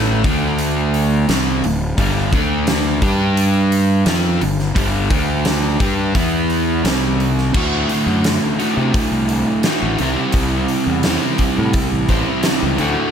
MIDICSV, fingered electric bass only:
0, 0, Header, 1, 2, 480
1, 0, Start_track
1, 0, Tempo, 696864
1, 1369, Time_signature, 4, 2, 24, 8
1, 9031, End_track
2, 0, Start_track
2, 0, Title_t, "Fingered electric bass"
2, 0, Program_c, 0, 33
2, 0, Note_on_c, 0, 33, 87
2, 143, Note_off_c, 0, 33, 0
2, 166, Note_on_c, 0, 38, 89
2, 859, Note_off_c, 0, 38, 0
2, 886, Note_on_c, 0, 36, 90
2, 1111, Note_off_c, 0, 36, 0
2, 1124, Note_on_c, 0, 26, 81
2, 1349, Note_off_c, 0, 26, 0
2, 1368, Note_on_c, 0, 31, 93
2, 1591, Note_off_c, 0, 31, 0
2, 1606, Note_on_c, 0, 38, 92
2, 2058, Note_off_c, 0, 38, 0
2, 2082, Note_on_c, 0, 43, 92
2, 2775, Note_off_c, 0, 43, 0
2, 2797, Note_on_c, 0, 41, 98
2, 3023, Note_off_c, 0, 41, 0
2, 3040, Note_on_c, 0, 31, 75
2, 3265, Note_off_c, 0, 31, 0
2, 3280, Note_on_c, 0, 31, 93
2, 3504, Note_off_c, 0, 31, 0
2, 3514, Note_on_c, 0, 38, 87
2, 3970, Note_off_c, 0, 38, 0
2, 4000, Note_on_c, 0, 43, 86
2, 4224, Note_off_c, 0, 43, 0
2, 4238, Note_on_c, 0, 40, 83
2, 4692, Note_off_c, 0, 40, 0
2, 4714, Note_on_c, 0, 36, 88
2, 5170, Note_off_c, 0, 36, 0
2, 5197, Note_on_c, 0, 38, 84
2, 5409, Note_off_c, 0, 38, 0
2, 5554, Note_on_c, 0, 42, 91
2, 5767, Note_off_c, 0, 42, 0
2, 6041, Note_on_c, 0, 48, 91
2, 6146, Note_off_c, 0, 48, 0
2, 6280, Note_on_c, 0, 36, 80
2, 6491, Note_off_c, 0, 36, 0
2, 6766, Note_on_c, 0, 33, 83
2, 6870, Note_off_c, 0, 33, 0
2, 6888, Note_on_c, 0, 36, 90
2, 6991, Note_off_c, 0, 36, 0
2, 7120, Note_on_c, 0, 36, 93
2, 7332, Note_off_c, 0, 36, 0
2, 7483, Note_on_c, 0, 40, 78
2, 7694, Note_off_c, 0, 40, 0
2, 7978, Note_on_c, 0, 45, 93
2, 8078, Note_off_c, 0, 45, 0
2, 8212, Note_on_c, 0, 33, 88
2, 8420, Note_off_c, 0, 33, 0
2, 8696, Note_on_c, 0, 37, 87
2, 8798, Note_off_c, 0, 37, 0
2, 8812, Note_on_c, 0, 38, 92
2, 8916, Note_off_c, 0, 38, 0
2, 9031, End_track
0, 0, End_of_file